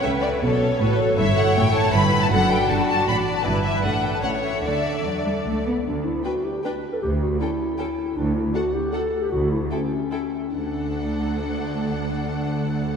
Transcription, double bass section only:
X:1
M:3/4
L:1/8
Q:1/4=154
K:D
V:1 name="Double bass section" clef=bass
C,,2 B,,,2 A,,,2 | G,,,2 A,,,2 G,,,2 | F,,,2 G,,,2 A,,,2 | G,,,2 A,,,2 A,,,2 |
D,,2 E,,2 C,,2 | D,,2 z4 | D,,2 z4 | D,,2 z4 |
D,,2 z4 | D,,6- | D,,6 |]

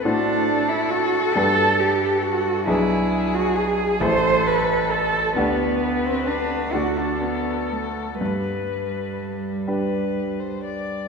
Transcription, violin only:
X:1
M:6/8
L:1/16
Q:3/8=44
K:G
V:1 name="Violin"
A12 | ^G6 A6 | B6 A6 | B6 B3 c d2 |]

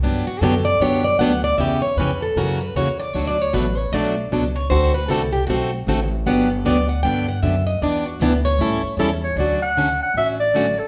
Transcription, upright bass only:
X:1
M:4/4
L:1/8
Q:"Swing" 1/4=154
K:D
V:1 name="Upright bass" clef=bass
G,, z F,,2 F,,2 D,,2 | E,,2 =F,,2 ^F,,2 E,,2 | D,,2 A,,,2 B,,,2 C,,2 | D,,2 =C,,2 B,,,2 A,,,2 |
G,,,2 D,,2 G,,2 F,,2 | E,,2 D,,2 A,, z E,,2 | D,,4 A,,,4 |]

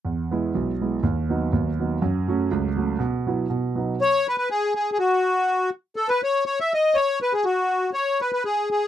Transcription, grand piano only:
X:1
M:2/4
L:1/8
Q:"Swing" 1/4=122
K:E
V:1 name="Grand piano" clef=bass
E,, [G,B,E] B,,, [G,B,E] | D,, [F,B,D] D,, [F,B,D] | F,, [F,A,C] C,, [F,A,C] | B,, [F,B,E] B,, [F,B,D] |
z4 | z4 | z4 | z4 |
z4 |]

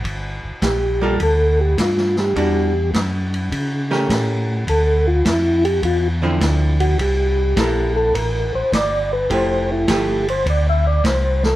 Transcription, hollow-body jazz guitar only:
X:1
M:4/4
L:1/8
Q:"Swing" 1/4=104
K:Dm
V:1 name="Hollow-body jazz guitar"
z3 [G,B,FA] z4 | [E,G,D^F] z4 [A,^CGB]3 | z4 z [D,F,CE]3 | z2 [B,EA]3 z3 |
[F,A,EG]2 [F,A,EG] z4 z |]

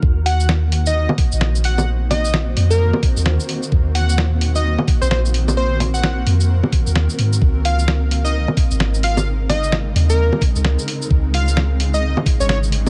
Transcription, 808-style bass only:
X:1
M:4/4
L:1/16
Q:"Swing 16ths" 1/4=130
K:Ebdor
V:1 name="808-style bass" clef=bass
E,,8- E,, z2 B,,,4- B,,,- | B,,,6 F,,3 z2 E,,2 z3 | E,,8- E,, z2 B,,,4- B,,,- | B,,,6 F,,3 z2 E,,2 z A,,2 |
D,,8- D,, z2 A,,,4- A,,,- | A,,,6 E,,3 z2 D,,2 z3 | D,,8- D,, z2 A,,,4- A,,, |]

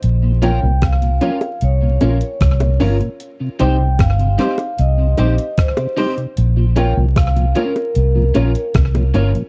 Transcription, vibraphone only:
X:1
M:4/4
L:1/16
Q:1/4=76
K:Bbdor
V:1 name="Vibraphone"
z2 g2 f4 d6 z2 | z2 g2 f4 e4 c3 z | z2 g2 f2 B6 z4 |]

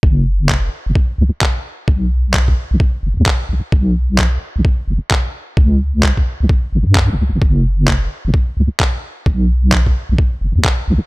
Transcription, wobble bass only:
X:1
M:4/4
L:1/16
Q:"Swing 16ths" 1/4=130
K:C#m
V:1 name="Wobble bass" clef=bass
F,,,6 z F,,, z2 C,, z4 z | B,,,6 z B,,, z2 F,,, D,, z2 B,,, z | B,,,6 z B,,, z2 F,,, z4 z | C,,6 z C,, z2 G,,, F,,2 G,,, C,, G,,, |
F,,,6 z F,,, z2 C,, z4 z | B,,,6 z B,,, z2 F,,, D,, z2 B,,, z |]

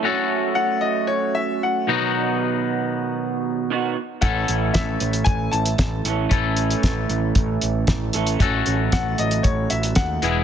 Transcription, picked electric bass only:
X:1
M:4/4
L:1/8
Q:1/4=115
K:F#dor
V:1 name="Picked electric bass" clef=bass
z8 | z8 | A,,, A,,, A,,, A,,, A,,, A,,, A,,, A,,, | A,,,2 A,,, A,,, A,,, A,,, A,,, A,,, |
A,,, A,,, A,,, A,,, A,,, A,,, D,, E,,, |]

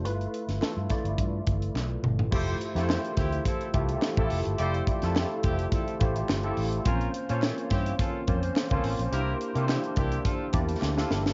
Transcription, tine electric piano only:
X:1
M:4/4
L:1/16
Q:"Swing 16ths" 1/4=106
K:F
V:1 name="Tine electric piano"
[A,EF=B]3 z [A,EFA] z [A,EFd]6 z4 | [A,EFGc]2 z [A,EFGBc]4- [A,EFGBc] z2 [A,EFGA]2 z [A,EFGA]2 z | [A,EFGd]2 z [A,EFGA]4- [A,EFGA] z2 [A,EFGc]2 z [A,EFGA]2 z | [B,C_DFc]2 z [B,DFc_d]4- [B,DFcd] z2 [B,CDFc]2 z [B,CDFc]2 z |
[B,DEGc]2 z [B,DEGBc]4- [B,DEGBc] z2 [B,DEGd]2 z [B,DEGA]2 z |]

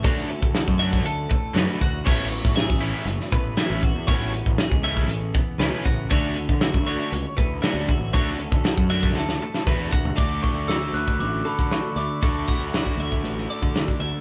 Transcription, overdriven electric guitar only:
X:1
M:4/4
L:1/8
Q:1/4=118
K:Dlyd
V:1 name="Overdriven electric guitar"
[D,A,DF] z2 [D,A,DF] z2 [D,A,DF] z | [E,A,CE] z2 [E,A,CE] z2 [E,A,CE] z | [E,A,CE] z2 [E,A,CE] z2 [E,A,CE] z | [D,A,DF] z2 [D,A,DF] z2 [D,A,DF] z |
[D,A,DF] z2 [D,A,DF] z2 [D,A,DF] z | [D,A,DF]8 | [D,A,DF]8 |]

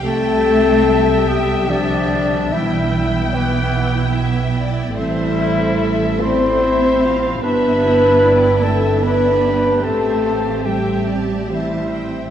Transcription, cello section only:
X:1
M:3/4
L:1/8
Q:1/4=74
K:Am
V:1 name="Cello section" clef=bass
A,3 G, D,2 | E,2 B,,3 z | E,3 C3 | B,3 A, B,2 |
A,2 G,2 E,2 |]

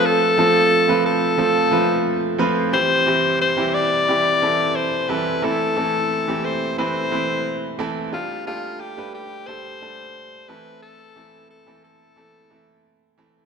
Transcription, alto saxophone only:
X:1
M:4/4
L:1/8
Q:1/4=89
K:Am
V:1 name="Alto saxophone"
A3 A4 z | c2 c d3 c B | A3 c c3 z | F F G G c3 B |
A2 A A4 z |]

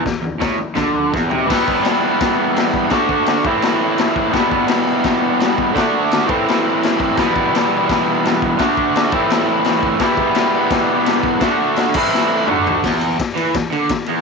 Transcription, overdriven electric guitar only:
X:1
M:4/4
L:1/8
Q:1/4=169
K:Em
V:1 name="Overdriven electric guitar" clef=bass
E,, E,, A,, z D,2 E,, C, | [E,G,B,E]8 | [D,A,DF]3 [A,,E,A,CE]4- [A,,E,A,CE] | [E,,B,,E,G,B,E]8 |
[D,A,DF]3 [A,,E,A,CE]4- [A,,E,A,CE] | [E,,B,,E,G,B,E]8 | [D,A,DF]3 [A,,E,A,CE]4- [A,,E,A,CE] | [E,,B,,E,G,B,E]8 |
[D,A,DF]3 [A,,E,A,CE]3 [D,A,DF]2 | E,,2 z E, E,, D, E,, E,, |]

